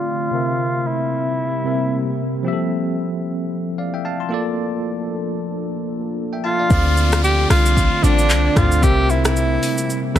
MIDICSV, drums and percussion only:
0, 0, Header, 1, 2, 480
1, 0, Start_track
1, 0, Key_signature, -1, "minor"
1, 0, Tempo, 530973
1, 300, Time_signature, 4, 2, 24, 8
1, 9212, End_track
2, 0, Start_track
2, 0, Title_t, "Drums"
2, 6060, Note_on_c, 9, 82, 82
2, 6061, Note_on_c, 9, 36, 119
2, 6151, Note_off_c, 9, 36, 0
2, 6151, Note_off_c, 9, 82, 0
2, 6302, Note_on_c, 9, 82, 54
2, 6393, Note_off_c, 9, 82, 0
2, 6440, Note_on_c, 9, 82, 72
2, 6443, Note_on_c, 9, 37, 121
2, 6446, Note_on_c, 9, 26, 106
2, 6530, Note_off_c, 9, 82, 0
2, 6533, Note_off_c, 9, 37, 0
2, 6537, Note_off_c, 9, 26, 0
2, 6546, Note_on_c, 9, 82, 80
2, 6636, Note_off_c, 9, 82, 0
2, 6783, Note_on_c, 9, 37, 108
2, 6785, Note_on_c, 9, 46, 76
2, 6785, Note_on_c, 9, 82, 57
2, 6786, Note_on_c, 9, 26, 82
2, 6873, Note_off_c, 9, 37, 0
2, 6875, Note_off_c, 9, 46, 0
2, 6875, Note_off_c, 9, 82, 0
2, 6876, Note_off_c, 9, 26, 0
2, 6921, Note_on_c, 9, 82, 77
2, 7011, Note_off_c, 9, 82, 0
2, 7022, Note_on_c, 9, 36, 90
2, 7027, Note_on_c, 9, 82, 59
2, 7112, Note_off_c, 9, 36, 0
2, 7118, Note_off_c, 9, 82, 0
2, 7267, Note_on_c, 9, 82, 65
2, 7358, Note_off_c, 9, 82, 0
2, 7400, Note_on_c, 9, 82, 77
2, 7491, Note_off_c, 9, 82, 0
2, 7501, Note_on_c, 9, 82, 69
2, 7502, Note_on_c, 9, 39, 100
2, 7592, Note_off_c, 9, 82, 0
2, 7593, Note_off_c, 9, 39, 0
2, 7741, Note_on_c, 9, 45, 92
2, 7742, Note_on_c, 9, 36, 99
2, 7742, Note_on_c, 9, 37, 109
2, 7743, Note_on_c, 9, 82, 52
2, 7745, Note_on_c, 9, 26, 85
2, 7831, Note_off_c, 9, 45, 0
2, 7832, Note_off_c, 9, 36, 0
2, 7833, Note_off_c, 9, 37, 0
2, 7834, Note_off_c, 9, 82, 0
2, 7836, Note_off_c, 9, 26, 0
2, 7879, Note_on_c, 9, 82, 77
2, 7969, Note_off_c, 9, 82, 0
2, 7981, Note_on_c, 9, 36, 114
2, 7981, Note_on_c, 9, 82, 80
2, 8072, Note_off_c, 9, 36, 0
2, 8072, Note_off_c, 9, 82, 0
2, 8223, Note_on_c, 9, 82, 56
2, 8313, Note_off_c, 9, 82, 0
2, 8360, Note_on_c, 9, 82, 72
2, 8363, Note_on_c, 9, 37, 120
2, 8366, Note_on_c, 9, 26, 99
2, 8450, Note_off_c, 9, 82, 0
2, 8453, Note_off_c, 9, 37, 0
2, 8457, Note_off_c, 9, 26, 0
2, 8465, Note_on_c, 9, 82, 76
2, 8555, Note_off_c, 9, 82, 0
2, 8704, Note_on_c, 9, 46, 79
2, 8704, Note_on_c, 9, 82, 56
2, 8794, Note_off_c, 9, 46, 0
2, 8794, Note_off_c, 9, 82, 0
2, 8840, Note_on_c, 9, 82, 78
2, 8930, Note_off_c, 9, 82, 0
2, 8947, Note_on_c, 9, 82, 59
2, 9038, Note_off_c, 9, 82, 0
2, 9182, Note_on_c, 9, 36, 97
2, 9182, Note_on_c, 9, 37, 102
2, 9212, Note_off_c, 9, 36, 0
2, 9212, Note_off_c, 9, 37, 0
2, 9212, End_track
0, 0, End_of_file